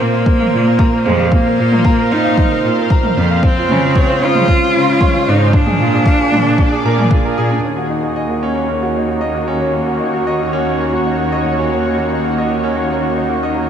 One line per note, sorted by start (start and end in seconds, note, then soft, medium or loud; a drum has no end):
0.00 3.43 A#2 medium
0.00 0.19 A#2 medium
0.00 4.27 A#3 medium
0.00 1.07 A#3 medium
0.00 0.13 C4 medium
0.00 0.53 F4 medium
0.00 0.39 A#4 medium
0.00 6.38 C5 medium
0.00 6.25 F5 medium
0.00 0.80 A#5 medium
0.13 0.26 F5 medium
0.26 0.34 C4 medium
0.26 kick medium
0.39 0.52 A#4 medium
0.39 mid tom medium
0.53 0.72 A#2 medium
0.53 0.66 F4 medium
0.66 0.79 A#4 medium
0.79 0.87 A#5 medium
0.79 kick medium
0.92 1.05 A#4 medium
1.05 1.24 F2 medium
1.05 1.32 G#3 medium
1.05 1.18 C4 medium
1.05 mid tom medium
1.19 1.32 F5 medium
1.32 2.13 A#3 loud
1.32 1.40 C4 medium
1.32 kick medium
1.46 1.58 A#4 medium
1.59 1.77 A#2 medium
1.59 1.71 F4 medium
1.72 1.85 A#4 medium
1.72 mid tom medium
1.85 1.93 A#5 medium
1.85 kick medium
1.99 2.11 A#4 medium
2.11 2.30 A#2 medium
2.11 2.24 C4 medium
2.11 2.64 D#4 medium
2.24 2.37 F5 medium
2.37 2.45 C4 medium
2.37 kick medium
2.37 mid tom medium
2.52 2.64 A#4 medium
2.64 2.83 A#2 medium
2.64 2.77 F4 medium
2.78 2.90 A#4 medium
2.90 2.98 A#5 medium
2.90 kick medium
3.03 3.16 A#4 medium
3.03 mid tom medium
3.17 3.35 F2 medium
3.17 3.29 C4 medium
3.30 3.43 F5 medium
3.42 5.53 C#3 medium
3.42 4.25 C4 loud
3.42 3.51 C4 medium
3.42 kick medium
3.50 5.53 G#3 medium
3.58 3.69 F4 medium
3.69 3.88 C#3 loud
3.69 3.82 C#4 medium
3.69 mid tom medium
3.83 3.95 F4 medium
3.96 4.04 C#5 medium
3.96 kick medium
4.10 4.22 F4 medium
4.21 4.40 C#3 medium
4.21 4.35 C4 medium
4.21 5.30 F4 loud
4.35 4.48 C5 medium
4.35 mid tom medium
4.48 4.56 C4 medium
4.48 kick medium
4.63 4.75 F4 medium
4.74 4.93 C#3 medium
4.74 4.88 C#4 medium
4.88 5.00 F4 medium
5.01 5.08 C#5 medium
5.01 kick medium
5.01 mid tom medium
5.14 5.26 F4 medium
5.27 5.45 G#2 medium
5.27 5.40 C4 medium
5.27 5.57 D#4 medium
5.40 5.53 C5 medium
5.52 7.63 A#2 medium
5.52 5.61 D4 medium
5.52 7.12 D4 loud
5.52 kick medium
5.66 5.79 G#4 medium
5.66 mid tom medium
5.79 5.98 A#2 medium
5.79 13.70 A#3 medium
5.79 5.92 F4 medium
5.94 6.06 G#4 medium
6.04 9.62 G#4 medium
6.04 6.14 F5 medium
6.04 kick loud
6.20 6.32 G#4 medium
6.32 6.51 A#2 medium
6.32 6.45 D4 loud
6.32 7.65 D5 loud
6.32 mid tom medium
6.47 6.59 D5 medium
6.58 6.67 D4 medium
6.58 kick medium
6.73 6.85 G#4 medium
6.84 7.03 A#2 medium
6.84 6.98 A#4 medium
6.98 7.11 G#4 medium
6.98 mid tom medium
7.11 7.24 F4 medium
7.11 kick medium
7.25 7.37 A#4 medium
7.37 7.56 A#2 medium
7.37 7.50 G#4 medium
7.51 7.63 D4 medium
7.63 13.70 D#2 medium
7.63 13.70 D#3 medium
7.63 7.71 C#4 medium
7.77 7.89 F#4 medium
7.89 8.02 D#4 medium
8.03 8.16 F#4 medium
8.12 13.70 C#5 medium
8.16 8.24 D#5 medium
8.29 8.42 F#4 medium
8.29 13.70 F#4 medium
8.43 8.55 C#4 medium
8.56 8.68 C#5 medium
8.69 8.76 C#4 medium
8.82 8.95 F#4 medium
8.96 9.08 D#4 medium
9.08 9.21 F#4 medium
9.21 9.29 D#5 medium
9.35 9.47 F#4 medium
9.48 9.60 C#4 medium
9.61 9.74 C#5 medium
9.73 9.81 C#4 medium
9.88 10.00 F#4 medium
10.00 10.13 D#4 medium
10.14 10.26 F#4 medium
10.27 10.35 D#5 medium
10.40 10.53 F#4 medium
10.53 10.66 C#4 medium
10.67 10.79 C#5 medium
10.79 10.87 C#4 medium
10.92 11.05 F#4 medium
11.06 11.18 D#4 medium
11.19 11.31 F#4 medium
11.32 11.40 D#5 medium
11.46 11.58 F#4 medium
11.59 11.71 C#4 medium
11.72 11.85 C#5 medium
11.85 11.93 C#4 medium
11.98 12.11 F#4 medium
12.11 12.24 D#4 medium
12.25 12.37 F#4 medium
12.38 12.45 D#5 medium
12.51 12.63 F#4 medium
12.64 12.76 C#4 medium
12.77 12.90 C#5 medium
12.90 12.98 C#4 medium
13.03 13.15 F#4 medium
13.16 13.29 D#4 medium
13.30 13.42 F#4 medium
13.43 13.50 D#5 medium
13.56 13.69 F#4 medium